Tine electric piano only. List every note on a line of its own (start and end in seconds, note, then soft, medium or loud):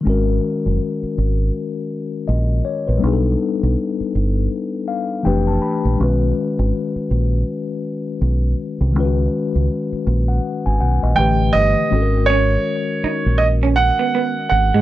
0.01 2.95 D#3 medium
0.01 2.96 G#3 medium
0.05 2.97 C#4 medium
0.05 2.99 F#4 soft
0.10 2.26 A#4 medium
2.28 2.63 D#5 soft
2.65 2.86 C#5 medium
2.87 3.22 B4 soft
2.98 5.18 G3 medium
2.98 5.19 B3 medium
3.02 5.20 D4 medium
3.02 5.21 D#4 medium
3.07 3.12 G#4 medium
3.13 5.25 A4 medium
4.88 5.22 F5 medium
5.23 5.97 E3 medium
5.23 5.98 A3 medium
5.23 5.98 D4 medium
5.23 5.99 G4 medium
5.23 5.45 G5 medium
5.27 6.00 B4 medium
5.47 5.60 A5 medium
5.62 5.96 B5 medium
5.95 8.89 D#3 medium
5.95 8.90 G#3 medium
6.00 8.91 C#4 medium
6.00 8.92 F#4 medium
6.04 8.93 B4 medium
8.91 11.11 D#3 medium
8.91 11.12 G#3 medium
8.96 11.13 C#4 medium
8.96 9.04 F4 soft
9.00 11.15 B4 medium
9.05 11.18 F#4 medium
10.28 10.63 F#5 soft
10.66 10.79 G#5 medium
10.81 11.01 F#5 medium
11.03 11.38 D#5 medium
11.15 11.91 D3 medium
11.15 11.90 E3 medium
11.15 11.90 A3 medium
11.15 11.91 G4 medium
11.20 11.92 B4 medium
11.87 14.81 D#3 medium
11.87 14.82 G#3 medium
11.91 14.82 C#4 medium
11.91 14.82 F#4 medium
11.95 12.01 A4 soft
12.02 14.82 A#4 medium